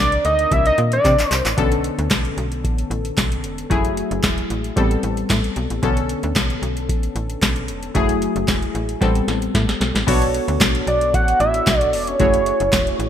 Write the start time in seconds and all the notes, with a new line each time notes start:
Already playing: D#3 C4 D4 A#4
0.00 C2 D5
0.12 closed hi-hat
0.25 D2 D#5, closed hi-hat
0.39 closed hi-hat
0.51 C2 E5, kick, closed hi-hat
0.66 D#5, closed hi-hat
0.78 A#2, closed hi-hat
0.92 D5, closed hi-hat
1.05 C3, kick, clap, closed hi-hat
1.19 clap, closed hi-hat
1.31 C2, clap, closed hi-hat
1.45 A1, clap, closed hi-hat
1.57 B1 D3 B3 C#4 A4, kick, closed hi-hat
1.72 closed hi-hat
1.84 closed hi-hat
1.99 D2, closed hi-hat
2.11 B1, kick, snare, clap, closed hi-hat
2.25 closed hi-hat
2.37 B1, closed hi-hat
2.52 closed hi-hat
2.64 A1, kick, closed hi-hat
2.78 closed hi-hat
2.90 A1, closed hi-hat
3.05 closed hi-hat
3.17 B1, kick, snare, clap, closed hi-hat
3.32 closed hi-hat
3.44 E1, closed hi-hat
3.58 closed hi-hat
3.70 F#1 F#3 A3 E4 G#4, kick, closed hi-hat
3.85 closed hi-hat
3.97 closed hi-hat
4.11 F#1, closed hi-hat
4.23 E1, kick, snare, clap, closed hi-hat
4.38 closed hi-hat
4.50 A1, closed hi-hat
4.64 closed hi-hat
4.76 A1 G3 B3 C4 A4, kick, closed hi-hat
4.91 closed hi-hat
5.03 A1, closed hi-hat
5.17 closed hi-hat
5.30 A2, kick, snare, clap, closed hi-hat
5.44 closed hi-hat
5.56 B1, closed hi-hat
5.70 A1, closed hi-hat
5.82 B1 D3 B3 C#4 A4, kick, closed hi-hat
5.97 closed hi-hat
6.09 closed hi-hat
6.23 D2, closed hi-hat
6.36 B1, kick, snare, clap, closed hi-hat
6.50 closed hi-hat
6.62 B1, closed hi-hat
6.77 closed hi-hat
6.89 A1, kick, closed hi-hat
7.03 closed hi-hat
7.16 A1, closed hi-hat
7.30 closed hi-hat
7.42 B1, kick, snare, clap, closed hi-hat
7.56 closed hi-hat
7.68 E1, closed hi-hat
7.83 closed hi-hat
7.94 F#1 F#3 A3 E4 G#4, kick, closed hi-hat
8.09 closed hi-hat
8.22 closed hi-hat
8.36 F#1, closed hi-hat
8.48 E1, kick, snare, clap, closed hi-hat
8.62 closed hi-hat
8.75 A1, closed hi-hat
8.89 closed hi-hat
9.01 A1 G3 B3 C4 A4, kick, snare, closed hi-hat
9.15 closed hi-hat
9.28 A1, snare, closed hi-hat
9.42 closed hi-hat
9.55 A2, kick, snare, closed hi-hat
9.69 snare, closed hi-hat
9.81 B1, snare, closed hi-hat
9.95 A1, snare, closed hi-hat
10.07 B1 B3 D4 F#4 A4 C#5, kick, closed hi-hat, crash
10.22 closed hi-hat
10.34 closed hi-hat
10.48 D2, closed hi-hat
10.60 B1, kick, snare, clap, closed hi-hat
10.75 closed hi-hat
10.87 B1 D5, closed hi-hat
11.01 closed hi-hat
11.14 A1 F#5, kick, closed hi-hat
11.28 closed hi-hat
11.40 A1 E5, closed hi-hat
11.54 closed hi-hat
11.67 B1, kick, snare, clap, closed hi-hat
11.79 D5, closed hi-hat
11.93 E1 D5, open hi-hat
12.07 C#5, closed hi-hat
12.19 F#1 A3 E4 F#4 G#4 C#5, kick, closed hi-hat
12.34 closed hi-hat
12.46 closed hi-hat
12.60 F#1, closed hi-hat
12.73 E1, kick, snare, clap, closed hi-hat
12.87 closed hi-hat
12.99 A1, closed hi-hat